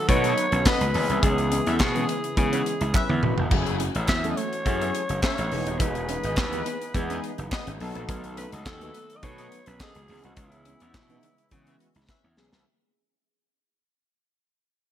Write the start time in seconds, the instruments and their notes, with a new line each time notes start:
Already playing: analog synth pad D#3 F#3 A3 B3 F#4, alto saxophone A4
0.08 slap bass B2, analog polysynth F#3 A3 B3 D#4 B4, alto saxophone C#5, kick, closed hi-hat
0.24 horn section B3 A4 D#5, clean electric guitar B3, closed hi-hat
0.38 muted clean electric guitar stroke, closed hi-hat
0.52 slap bass B1, clean electric guitar C#4, closed hi-hat
0.66 horn section B3 A4 D#5, clean electric guitar C#4, alto saxophone B4, kick, snare, clap
0.81 slap bass C#2, closed hi-hat
0.94 slap bass C#2, analog synth pad C#3 E3 E4, analog polysynth E3 G#3 B3 C#4 G#4, open hi-hat
1.09 slap bass C2, clean electric guitar B3, closed hi-hat
1.23 slap bass C#2, clean electric guitar C#4, alto saxophone G#4, kick, closed hi-hat
1.38 muted clean electric guitar stroke, closed hi-hat
1.52 clean electric guitar C#4, closed hi-hat
1.67 slap bass E2, horn section C#4 B4 E5, closed hi-hat
1.74 alto saxophone A4
1.80 slap bass B2, alto saxophone G#4, muted clean electric guitar stroke, kick, snare, clap
1.95 analog polysynth E3 G#3 B3 C#4 G#4, clean electric guitar B3, closed hi-hat
2.09 clean electric guitar B3, closed hi-hat
2.24 closed hi-hat
2.37 slap bass C#3, analog polysynth E3 G#3 B3 C#4 G#4, alto saxophone G#4, kick, closed hi-hat
2.52 horn section C#4 B4 E5, clean electric guitar C#4, closed hi-hat
2.66 muted clean electric guitar stroke, closed hi-hat
2.81 slap bass C#2, clean electric guitar E4, closed hi-hat
2.94 horn section C#4 B4 E5, alto saxophone B4, kick, clap, high tom
3.09 slap bass E2, clean electric guitar C#4, mid tom
3.23 slap bass E1, analog polysynth E3 G#3 B3 C#4 F#4, muted clean electric guitar stroke, mid tom
3.38 slap bass F1, clean electric guitar B3, floor tom
3.51 slap bass F#1, analog polysynth F#3 A3 C#4 E4 G#4, analog synth pad A3 C#4 F#4, clean electric guitar F#4, kick, crash
3.66 closed hi-hat
3.80 clean electric guitar C#4, closed hi-hat
3.95 slap bass A1, horn section C#4 A4 E5, closed hi-hat
4.08 slap bass E2, alto saxophone E5, muted clean electric guitar stroke, kick, snare, clap
4.24 analog polysynth F#3 A3 C#4 E4 A4, clean electric guitar A3, closed hi-hat
4.31 alto saxophone D#5
4.37 clean electric guitar A3, alto saxophone C#5, closed hi-hat
4.53 closed hi-hat
4.65 slap bass F#2, analog polysynth F#3 A3 C#4 E4 G#4, kick, closed hi-hat
4.81 clean electric guitar B3, horn section C#4 A4 E5, closed hi-hat
4.95 muted clean electric guitar stroke, closed hi-hat
5.09 slap bass F#1, clean electric guitar C#4, closed hi-hat
5.22 horn section C#4 A4 E5, clean electric guitar C#4, alto saxophone C#5, kick, snare, clap
5.38 slap bass A1, muted clean electric guitar stroke, closed hi-hat
5.51 slap bass E1, analog polysynth E3 G#3 B3 D#4 G#4, analog synth pad B3 D#4 G#4, open hi-hat
5.66 slap bass D#1, clean electric guitar D#4, closed hi-hat
5.79 slap bass E1, clean electric guitar E4, alto saxophone B4, kick, closed hi-hat
5.95 muted clean electric guitar stroke, closed hi-hat
6.09 clean electric guitar C#4, closed hi-hat
6.24 slap bass G#1, horn section B3 G#4 D#5, closed hi-hat
6.37 slap bass D#2, muted clean electric guitar stroke, kick, snare, clap
6.52 analog polysynth E3 G#3 B3 D#4 B4, clean electric guitar B3, closed hi-hat
6.66 clean electric guitar B3, closed hi-hat
6.82 closed hi-hat
6.94 slap bass E2, analog polysynth E3 G#3 B3 D#4 G#4, kick, closed hi-hat
7.09 horn section B3 G#4 D#5, clean electric guitar C#4, closed hi-hat
7.24 closed hi-hat
7.38 slap bass F#1, clean electric guitar D#4, closed hi-hat
7.51 horn section B3 G#4 D#5, kick, snare, clap
7.54 clap
7.67 slap bass G#1, clean electric guitar C#4, closed hi-hat
7.80 slap bass B1, analog synth pad D#3 F#3 A3 B3 F#4, analog polysynth F#3 A3 B3 D#4 A4, muted clean electric guitar stroke, open hi-hat
7.95 slap bass A#1, clean electric guitar B3, closed hi-hat
8.09 slap bass B1, clean electric guitar B3, kick, closed hi-hat
8.24 muted clean electric guitar stroke, closed hi-hat
8.37 clean electric guitar C#4, alto saxophone B4, closed hi-hat
8.52 slap bass C#2, horn section B3 A4 D#5, closed hi-hat
8.66 slap bass D#2, alto saxophone A4, muted clean electric guitar stroke, kick, snare, clap
8.81 analog polysynth F#3 A3 B3 D#4 B4, clean electric guitar A3, closed hi-hat
8.94 clean electric guitar A3, closed hi-hat
9.10 closed hi-hat
9.17 alto saxophone D#5
9.23 slap bass B2, analog polysynth F#3 A3 B3 D#4 B4, alto saxophone C#5, kick, closed hi-hat
9.38 horn section B3 A4 D#5, clean electric guitar B3, closed hi-hat
9.52 muted clean electric guitar stroke, closed hi-hat
9.66 slap bass B1, clean electric guitar C#4, alto saxophone B4, closed hi-hat
9.80 horn section B3 A4 D#5, clean electric guitar C#4, alto saxophone G#4, kick, snare, clap
9.95 slap bass C#2, muted clean electric guitar stroke, closed hi-hat
10.08 slap bass C#2, analog synth pad C#3 E3 G#3 E4, analog polysynth E3 G#3 B3 C#4 G#4, open hi-hat
10.24 slap bass C2, clean electric guitar B3, alto saxophone F#4, closed hi-hat
10.37 slap bass C#2, clean electric guitar C#4, alto saxophone E4, kick, closed hi-hat
10.52 closed hi-hat
10.65 clean electric guitar C#4, closed hi-hat
10.80 slap bass E2, horn section C#4 B4 E5, closed hi-hat
10.94 slap bass B2, muted clean electric guitar stroke, kick, snare, clap
11.09 analog polysynth E3 G#3 B3 C#4 D#4, clean electric guitar B3, closed hi-hat
11.23 clean electric guitar B3, closed hi-hat
11.38 closed hi-hat
11.51 slap bass C#3, analog polysynth E3 G#3 B3 C#4 F#4, kick, closed hi-hat
11.67 horn section C#4 B4 E5, clean electric guitar C#4, closed hi-hat
11.80 muted clean electric guitar stroke, closed hi-hat
11.95 slap bass C#2, clean electric guitar E4, closed hi-hat
12.09 horn section C#4 B4 E5, kick, snare, clap
12.24 slap bass E2, clean electric guitar C#4
12.37 slap bass B1, analog polysynth E3 G#3 B3 C#4 G#4, snare
12.53 slap bass C2, clean electric guitar B3, snare